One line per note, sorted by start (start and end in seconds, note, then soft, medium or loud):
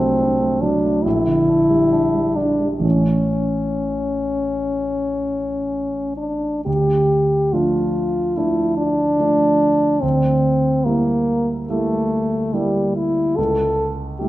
0.00 1.01 C2 soft
0.00 0.62 F#3 soft
0.00 0.33 A3 soft
0.00 0.63 C4 medium
0.00 0.11 D4 soft
0.20 0.54 D4 soft
0.41 0.75 A3 soft
0.62 0.96 F#3 soft
0.62 1.05 D4 medium
0.84 1.05 A3 soft
1.04 2.81 A#1 soft
1.04 2.37 E4 medium
1.26 1.61 D3 soft
1.49 1.83 D4 soft
1.70 2.05 G3 soft
1.92 2.28 D4 soft
2.15 2.51 G3 soft
2.36 2.69 D4 medium
2.36 2.75 D4 soft
2.60 2.84 G3 soft
2.79 6.60 A1 soft
2.79 6.61 E3 soft
2.79 6.61 A3 soft
2.79 6.62 C#4 soft
2.84 6.14 C#4 medium
6.17 6.63 D4 soft
6.65 7.50 D2 soft
6.65 7.55 G4 medium
7.53 8.33 F3 soft
7.53 8.32 A3 soft
7.53 8.33 D4 soft
7.53 8.38 F4 medium
8.37 9.16 F3 soft
8.37 9.16 A3 soft
8.37 9.16 D4 soft
8.37 8.77 E4 medium
8.78 10.04 D4 medium
9.19 9.99 F3 soft
9.19 9.99 A3 soft
9.19 9.99 D4 soft
10.02 10.82 D2 soft
10.02 10.87 C4 medium
10.85 11.65 G3 soft
10.85 11.52 A#3 medium
10.85 11.65 A#3 soft
10.85 11.65 E4 soft
11.69 12.50 G3 soft
11.69 12.56 A3 medium
11.69 12.50 A#3 soft
11.69 12.50 E4 soft
12.54 13.34 G3 soft
12.54 12.96 G3 medium
12.54 13.34 A#3 soft
12.54 13.34 E4 soft
12.96 13.38 E4 medium
13.37 14.18 C#2 soft
13.37 13.92 A4 medium
14.20 14.29 G3 soft
14.20 14.29 A3 soft
14.20 14.29 E4 soft
14.20 14.29 G4 medium